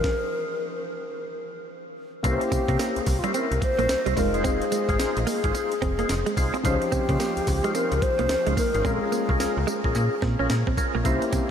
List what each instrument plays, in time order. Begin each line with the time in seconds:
Already playing: alto flute A#4
0.04 kick, snare
2.23 fm bass C2, grand piano A#3 C#4 E4 B4, tonewheel organ C#4 E4 A#4 C5, alto flute G4, kick, closed hi-hat, tambourine
2.32 grand piano C5
2.41 muted clean electric guitar stroke, closed hi-hat
2.52 fm bass C3, clean electric guitar C4, kick, closed hi-hat, tambourine
2.68 fm bass C3, clean electric guitar A#3, tonewheel organ C#4 E4 A#4 C5, kick, closed hi-hat
2.79 clean electric guitar A#3, tonewheel organ C#4 E4 A#4 C5, snare, closed hi-hat, tambourine
2.96 fm bass C2, closed hi-hat
3.01 alto flute G#4
3.06 fm bass C2, alto flute G4, muted clean electric guitar stroke, kick, open hi-hat, tambourine
3.19 alto flute F4
3.23 clean electric guitar G3, tonewheel organ C#4 E4 A#4 C5, closed hi-hat
3.28 alto flute G4
3.34 clean electric guitar C4, tonewheel organ C#4 E4 A#4 C5, alto flute A#4, closed hi-hat, tambourine
3.52 fm bass C2, closed hi-hat
3.62 alto flute C5, muted clean electric guitar stroke, kick, closed hi-hat
3.79 fm bass A#1, clean electric guitar A#3, tonewheel organ C#4 E4 A#4 C5, closed hi-hat
3.89 muted clean electric guitar stroke, snare, closed hi-hat, tambourine
4.06 fm bass C2, clean electric guitar G3, tonewheel organ C#4 E4 A#4 C5, closed hi-hat
4.16 fm bass F1, grand piano G#3 D#4 F4 C5, clean electric guitar G#3, alto flute A#4, kick, open hi-hat, tambourine
4.34 tonewheel organ D#4 F4 G#4 C5, closed hi-hat
4.44 clean electric guitar C4, tonewheel organ D#4 F4 G#4 C5, alto flute G#4, kick, closed hi-hat, tambourine
4.62 closed hi-hat
4.72 clean electric guitar G#3, closed hi-hat, tambourine
4.89 fm bass G#1, tonewheel organ D#4 F4 G#4 C5, muted clean electric guitar stroke, kick, closed hi-hat
4.99 fm bass A#1, tonewheel organ D#4 F4 G#4 C5, snare, closed hi-hat, tambourine
5.17 fm bass A#1, closed hi-hat
5.27 clean electric guitar A#3, alto flute G#4, open hi-hat, tambourine
5.44 fm bass G#1, tonewheel organ D#4 F4 G#4 C5, kick, closed hi-hat
5.54 tonewheel organ D#4 F4 G#4 C5, muted clean electric guitar stroke, closed hi-hat, tambourine
5.72 closed hi-hat
5.82 fm bass F1, clean electric guitar C4, kick, closed hi-hat
5.99 clean electric guitar A#3, tonewheel organ D#4 F4 G#4 C5, closed hi-hat
6.09 fm bass F1, snare, closed hi-hat, tambourine
6.26 clean electric guitar G#3, closed hi-hat
6.37 fm bass C2, tonewheel organ D#4 F4 G#4 C5, muted clean electric guitar stroke, kick, open hi-hat, tambourine
6.54 clean electric guitar C4, closed hi-hat
6.63 fm bass C#2, grand piano F3 C#4 D#4 C5, tonewheel organ C#4 D#4 F4 C5, alto flute G4, kick, closed hi-hat, tambourine
6.82 muted clean electric guitar stroke, closed hi-hat
6.92 fm bass C#3, clean electric guitar C4, kick, closed hi-hat, tambourine
7.09 fm bass C#3, clean electric guitar A#3, tonewheel organ C#4 D#4 F4 C5, kick, closed hi-hat
7.20 clean electric guitar A#3, tonewheel organ C#4 D#4 F4 C5, snare, closed hi-hat, tambourine
7.37 fm bass C#2, closed hi-hat
7.47 fm bass C#2, muted clean electric guitar stroke, kick, open hi-hat, tambourine
7.64 clean electric guitar G#3, tonewheel organ C#4 D#4 F4 C5, closed hi-hat
7.74 clean electric guitar C4, tonewheel organ C#4 D#4 F4 C5, alto flute A#4, closed hi-hat, tambourine
7.92 fm bass C#2, closed hi-hat
8.02 alto flute C5, muted clean electric guitar stroke, kick, closed hi-hat
8.19 fm bass C2, clean electric guitar A#3, tonewheel organ C#4 D#4 F4 C5, closed hi-hat
8.29 muted clean electric guitar stroke, snare, closed hi-hat, tambourine
8.46 fm bass C#2, clean electric guitar G#3, tonewheel organ C#4 D#4 F4 C5, closed hi-hat
8.57 clean electric guitar A#3, alto flute A#4, kick, open hi-hat, tambourine
8.74 fm bass G#1, tonewheel organ C#4 D#4 F4 C5, closed hi-hat
8.84 fm bass A#1, grand piano G#3 C#4 F4 A#4, clean electric guitar C4, tonewheel organ C#4 F4 G#4 A#4, alto flute G#4, kick, tambourine
9.12 clean electric guitar A#3, tambourine
9.29 fm bass C2, tonewheel organ C#4 F4 G#4 A#4, muted clean electric guitar stroke, kick
9.40 tonewheel organ C#4 F4 G#4 A#4, snare, tambourine
9.57 fm bass C#2
9.67 clean electric guitar G#3, alto flute G#4, tambourine
9.84 fm bass A#1, tonewheel organ C#4 F4 G#4 A#4, kick
9.95 fm bass A#2, tonewheel organ C#4 F4 G#4 A#4, muted clean electric guitar stroke, tambourine
10.22 fm bass A#2, clean electric guitar C4, kick, snare
10.39 fm bass A#1, tonewheel organ C#4 F4 G#4 A#4, clean electric guitar C#4
10.50 fm bass A#2, snare, tambourine
10.67 fm bass A#1, clean electric guitar C4, kick
10.77 tonewheel organ C#4 F4 G#4 A#4, muted clean electric guitar stroke, kick, tambourine
10.95 fm bass A#1, clean electric guitar A#3
11.04 fm bass C2, grand piano A#3 C#4 E4 C5, tonewheel organ C#4 E4 A#4 C5, alto flute G4, kick, closed hi-hat, tambourine
11.22 muted clean electric guitar stroke, closed hi-hat
11.33 fm bass C3, clean electric guitar C4, kick, closed hi-hat, tambourine